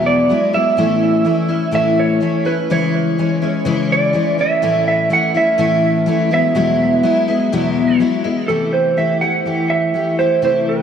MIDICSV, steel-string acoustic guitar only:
0, 0, Header, 1, 2, 480
1, 0, Start_track
1, 0, Tempo, 480769
1, 782, Time_signature, 4, 2, 24, 8
1, 6544, Tempo, 485437
1, 10764, End_track
2, 0, Start_track
2, 0, Title_t, "Steel-string acoustic guitar"
2, 0, Program_c, 0, 25
2, 0, Note_on_c, 0, 40, 82
2, 0, Note_on_c, 0, 47, 83
2, 0, Note_on_c, 0, 54, 87
2, 0, Note_on_c, 0, 56, 84
2, 0, Note_on_c, 0, 59, 91
2, 0, Note_on_c, 0, 64, 82
2, 278, Note_off_c, 0, 54, 0
2, 287, Note_off_c, 0, 56, 0
2, 290, Note_on_c, 0, 54, 65
2, 291, Note_off_c, 0, 59, 0
2, 296, Note_off_c, 0, 40, 0
2, 298, Note_off_c, 0, 47, 0
2, 299, Note_on_c, 0, 56, 66
2, 303, Note_on_c, 0, 59, 63
2, 309, Note_off_c, 0, 64, 0
2, 313, Note_on_c, 0, 64, 76
2, 518, Note_off_c, 0, 64, 0
2, 522, Note_off_c, 0, 59, 0
2, 526, Note_off_c, 0, 56, 0
2, 530, Note_on_c, 0, 64, 56
2, 534, Note_on_c, 0, 59, 57
2, 536, Note_off_c, 0, 54, 0
2, 538, Note_on_c, 0, 56, 55
2, 550, Note_on_c, 0, 54, 48
2, 768, Note_on_c, 0, 45, 76
2, 773, Note_off_c, 0, 54, 0
2, 775, Note_off_c, 0, 64, 0
2, 777, Note_off_c, 0, 56, 0
2, 777, Note_off_c, 0, 59, 0
2, 777, Note_on_c, 0, 52, 79
2, 781, Note_on_c, 0, 57, 82
2, 781, Note_on_c, 0, 61, 92
2, 786, Note_on_c, 0, 64, 79
2, 1240, Note_off_c, 0, 52, 0
2, 1242, Note_off_c, 0, 57, 0
2, 1244, Note_on_c, 0, 52, 71
2, 1254, Note_off_c, 0, 45, 0
2, 1254, Note_on_c, 0, 57, 71
2, 1255, Note_off_c, 0, 61, 0
2, 1259, Note_on_c, 0, 61, 72
2, 1261, Note_off_c, 0, 64, 0
2, 1265, Note_on_c, 0, 64, 71
2, 1470, Note_off_c, 0, 64, 0
2, 1477, Note_off_c, 0, 61, 0
2, 1482, Note_on_c, 0, 64, 64
2, 1489, Note_on_c, 0, 61, 60
2, 1491, Note_off_c, 0, 52, 0
2, 1492, Note_off_c, 0, 57, 0
2, 1504, Note_on_c, 0, 57, 49
2, 1709, Note_off_c, 0, 57, 0
2, 1712, Note_on_c, 0, 45, 78
2, 1715, Note_off_c, 0, 61, 0
2, 1718, Note_off_c, 0, 64, 0
2, 1721, Note_on_c, 0, 52, 84
2, 1721, Note_on_c, 0, 57, 85
2, 1727, Note_on_c, 0, 61, 88
2, 1730, Note_on_c, 0, 64, 88
2, 2194, Note_off_c, 0, 57, 0
2, 2196, Note_off_c, 0, 52, 0
2, 2200, Note_on_c, 0, 52, 69
2, 2205, Note_off_c, 0, 45, 0
2, 2206, Note_on_c, 0, 57, 67
2, 2213, Note_off_c, 0, 61, 0
2, 2217, Note_on_c, 0, 61, 73
2, 2218, Note_off_c, 0, 64, 0
2, 2222, Note_on_c, 0, 64, 75
2, 2433, Note_off_c, 0, 64, 0
2, 2445, Note_on_c, 0, 64, 58
2, 2448, Note_off_c, 0, 61, 0
2, 2449, Note_off_c, 0, 52, 0
2, 2452, Note_off_c, 0, 57, 0
2, 2460, Note_on_c, 0, 61, 51
2, 2466, Note_on_c, 0, 57, 44
2, 2691, Note_off_c, 0, 64, 0
2, 2692, Note_off_c, 0, 57, 0
2, 2694, Note_off_c, 0, 61, 0
2, 2695, Note_on_c, 0, 49, 72
2, 2696, Note_on_c, 0, 56, 77
2, 2699, Note_on_c, 0, 52, 83
2, 2706, Note_on_c, 0, 61, 79
2, 2706, Note_on_c, 0, 64, 98
2, 3171, Note_off_c, 0, 56, 0
2, 3174, Note_off_c, 0, 52, 0
2, 3176, Note_off_c, 0, 49, 0
2, 3178, Note_on_c, 0, 52, 59
2, 3183, Note_off_c, 0, 61, 0
2, 3183, Note_on_c, 0, 56, 59
2, 3187, Note_on_c, 0, 61, 75
2, 3193, Note_off_c, 0, 64, 0
2, 3197, Note_on_c, 0, 64, 69
2, 3399, Note_off_c, 0, 64, 0
2, 3404, Note_off_c, 0, 61, 0
2, 3411, Note_on_c, 0, 64, 65
2, 3416, Note_on_c, 0, 61, 60
2, 3417, Note_off_c, 0, 52, 0
2, 3417, Note_off_c, 0, 56, 0
2, 3429, Note_on_c, 0, 56, 59
2, 3643, Note_off_c, 0, 56, 0
2, 3643, Note_off_c, 0, 61, 0
2, 3644, Note_on_c, 0, 49, 95
2, 3644, Note_on_c, 0, 52, 99
2, 3646, Note_off_c, 0, 64, 0
2, 3655, Note_on_c, 0, 56, 106
2, 3655, Note_on_c, 0, 61, 97
2, 3658, Note_on_c, 0, 64, 92
2, 4121, Note_off_c, 0, 52, 0
2, 4124, Note_off_c, 0, 56, 0
2, 4125, Note_on_c, 0, 52, 68
2, 4127, Note_off_c, 0, 61, 0
2, 4131, Note_off_c, 0, 49, 0
2, 4136, Note_on_c, 0, 56, 73
2, 4139, Note_on_c, 0, 61, 67
2, 4142, Note_off_c, 0, 64, 0
2, 4146, Note_on_c, 0, 64, 68
2, 4361, Note_off_c, 0, 64, 0
2, 4371, Note_off_c, 0, 52, 0
2, 4371, Note_off_c, 0, 61, 0
2, 4373, Note_on_c, 0, 64, 53
2, 4376, Note_off_c, 0, 56, 0
2, 4383, Note_on_c, 0, 61, 61
2, 4396, Note_on_c, 0, 57, 48
2, 4608, Note_off_c, 0, 57, 0
2, 4613, Note_on_c, 0, 45, 80
2, 4615, Note_off_c, 0, 64, 0
2, 4617, Note_off_c, 0, 61, 0
2, 4620, Note_on_c, 0, 52, 81
2, 4620, Note_on_c, 0, 57, 85
2, 4629, Note_on_c, 0, 61, 76
2, 4630, Note_on_c, 0, 64, 86
2, 5082, Note_off_c, 0, 57, 0
2, 5085, Note_off_c, 0, 52, 0
2, 5089, Note_on_c, 0, 52, 59
2, 5091, Note_off_c, 0, 61, 0
2, 5094, Note_on_c, 0, 57, 72
2, 5096, Note_off_c, 0, 45, 0
2, 5103, Note_on_c, 0, 61, 66
2, 5108, Note_off_c, 0, 64, 0
2, 5112, Note_on_c, 0, 64, 71
2, 5323, Note_off_c, 0, 64, 0
2, 5334, Note_off_c, 0, 52, 0
2, 5334, Note_off_c, 0, 61, 0
2, 5335, Note_on_c, 0, 64, 58
2, 5337, Note_off_c, 0, 57, 0
2, 5346, Note_on_c, 0, 61, 55
2, 5352, Note_on_c, 0, 57, 48
2, 5566, Note_off_c, 0, 57, 0
2, 5569, Note_off_c, 0, 61, 0
2, 5569, Note_on_c, 0, 45, 90
2, 5573, Note_off_c, 0, 64, 0
2, 5573, Note_on_c, 0, 52, 95
2, 5578, Note_on_c, 0, 57, 78
2, 5581, Note_on_c, 0, 61, 89
2, 5585, Note_on_c, 0, 64, 96
2, 6047, Note_off_c, 0, 52, 0
2, 6048, Note_off_c, 0, 57, 0
2, 6051, Note_on_c, 0, 52, 81
2, 6055, Note_off_c, 0, 45, 0
2, 6056, Note_off_c, 0, 61, 0
2, 6060, Note_on_c, 0, 57, 74
2, 6068, Note_on_c, 0, 61, 74
2, 6074, Note_off_c, 0, 64, 0
2, 6078, Note_on_c, 0, 64, 82
2, 6287, Note_off_c, 0, 64, 0
2, 6296, Note_off_c, 0, 52, 0
2, 6299, Note_on_c, 0, 64, 63
2, 6300, Note_off_c, 0, 61, 0
2, 6301, Note_off_c, 0, 57, 0
2, 6304, Note_on_c, 0, 59, 59
2, 6308, Note_on_c, 0, 56, 49
2, 6319, Note_on_c, 0, 54, 54
2, 6531, Note_off_c, 0, 54, 0
2, 6535, Note_off_c, 0, 56, 0
2, 6535, Note_off_c, 0, 59, 0
2, 6538, Note_on_c, 0, 47, 79
2, 6539, Note_on_c, 0, 40, 75
2, 6541, Note_off_c, 0, 64, 0
2, 6543, Note_on_c, 0, 54, 74
2, 6547, Note_on_c, 0, 56, 79
2, 6547, Note_on_c, 0, 59, 85
2, 6553, Note_on_c, 0, 64, 90
2, 7004, Note_off_c, 0, 54, 0
2, 7006, Note_off_c, 0, 56, 0
2, 7016, Note_off_c, 0, 59, 0
2, 7016, Note_on_c, 0, 54, 78
2, 7018, Note_off_c, 0, 40, 0
2, 7018, Note_off_c, 0, 47, 0
2, 7018, Note_on_c, 0, 56, 78
2, 7022, Note_off_c, 0, 64, 0
2, 7028, Note_on_c, 0, 59, 72
2, 7034, Note_on_c, 0, 64, 88
2, 7247, Note_off_c, 0, 64, 0
2, 7252, Note_off_c, 0, 59, 0
2, 7257, Note_off_c, 0, 54, 0
2, 7258, Note_off_c, 0, 56, 0
2, 7259, Note_on_c, 0, 64, 68
2, 7263, Note_on_c, 0, 59, 63
2, 7274, Note_on_c, 0, 56, 57
2, 7278, Note_on_c, 0, 54, 54
2, 7496, Note_off_c, 0, 56, 0
2, 7498, Note_off_c, 0, 54, 0
2, 7498, Note_off_c, 0, 64, 0
2, 7500, Note_off_c, 0, 59, 0
2, 7502, Note_on_c, 0, 40, 92
2, 7506, Note_on_c, 0, 47, 85
2, 7508, Note_on_c, 0, 56, 103
2, 7510, Note_on_c, 0, 54, 96
2, 7512, Note_on_c, 0, 64, 95
2, 7515, Note_on_c, 0, 59, 99
2, 7958, Note_off_c, 0, 54, 0
2, 7965, Note_off_c, 0, 56, 0
2, 7970, Note_on_c, 0, 54, 71
2, 7973, Note_off_c, 0, 59, 0
2, 7974, Note_off_c, 0, 64, 0
2, 7977, Note_on_c, 0, 56, 70
2, 7979, Note_off_c, 0, 40, 0
2, 7981, Note_off_c, 0, 47, 0
2, 7985, Note_on_c, 0, 59, 73
2, 7986, Note_on_c, 0, 64, 77
2, 8199, Note_off_c, 0, 64, 0
2, 8201, Note_off_c, 0, 59, 0
2, 8210, Note_off_c, 0, 56, 0
2, 8211, Note_on_c, 0, 64, 67
2, 8213, Note_off_c, 0, 54, 0
2, 8213, Note_on_c, 0, 59, 63
2, 8222, Note_on_c, 0, 56, 55
2, 8231, Note_on_c, 0, 54, 51
2, 8452, Note_off_c, 0, 54, 0
2, 8454, Note_off_c, 0, 64, 0
2, 8455, Note_off_c, 0, 59, 0
2, 8456, Note_on_c, 0, 48, 63
2, 8456, Note_on_c, 0, 52, 74
2, 8459, Note_off_c, 0, 56, 0
2, 8464, Note_on_c, 0, 57, 67
2, 8466, Note_on_c, 0, 64, 71
2, 8470, Note_on_c, 0, 67, 69
2, 8928, Note_off_c, 0, 52, 0
2, 8932, Note_on_c, 0, 52, 57
2, 8935, Note_off_c, 0, 57, 0
2, 8937, Note_off_c, 0, 48, 0
2, 8938, Note_on_c, 0, 57, 53
2, 8940, Note_off_c, 0, 64, 0
2, 8940, Note_off_c, 0, 67, 0
2, 8944, Note_on_c, 0, 64, 65
2, 8952, Note_on_c, 0, 67, 59
2, 9159, Note_off_c, 0, 67, 0
2, 9168, Note_off_c, 0, 64, 0
2, 9170, Note_on_c, 0, 67, 52
2, 9174, Note_off_c, 0, 57, 0
2, 9175, Note_off_c, 0, 52, 0
2, 9180, Note_on_c, 0, 64, 49
2, 9186, Note_on_c, 0, 57, 50
2, 9410, Note_off_c, 0, 57, 0
2, 9411, Note_off_c, 0, 64, 0
2, 9411, Note_on_c, 0, 52, 55
2, 9415, Note_off_c, 0, 67, 0
2, 9422, Note_on_c, 0, 57, 58
2, 9423, Note_on_c, 0, 64, 62
2, 9430, Note_on_c, 0, 67, 66
2, 9886, Note_off_c, 0, 52, 0
2, 9890, Note_on_c, 0, 52, 54
2, 9895, Note_off_c, 0, 57, 0
2, 9897, Note_off_c, 0, 67, 0
2, 9899, Note_on_c, 0, 57, 58
2, 9901, Note_off_c, 0, 64, 0
2, 9905, Note_on_c, 0, 64, 54
2, 9909, Note_on_c, 0, 67, 64
2, 10126, Note_off_c, 0, 67, 0
2, 10136, Note_off_c, 0, 52, 0
2, 10137, Note_off_c, 0, 64, 0
2, 10138, Note_on_c, 0, 67, 51
2, 10140, Note_off_c, 0, 57, 0
2, 10149, Note_on_c, 0, 64, 48
2, 10162, Note_on_c, 0, 57, 44
2, 10358, Note_off_c, 0, 57, 0
2, 10366, Note_off_c, 0, 64, 0
2, 10366, Note_on_c, 0, 48, 68
2, 10369, Note_off_c, 0, 67, 0
2, 10369, Note_on_c, 0, 52, 66
2, 10370, Note_on_c, 0, 57, 68
2, 10378, Note_on_c, 0, 64, 80
2, 10381, Note_on_c, 0, 67, 72
2, 10764, Note_off_c, 0, 48, 0
2, 10764, Note_off_c, 0, 52, 0
2, 10764, Note_off_c, 0, 57, 0
2, 10764, Note_off_c, 0, 64, 0
2, 10764, Note_off_c, 0, 67, 0
2, 10764, End_track
0, 0, End_of_file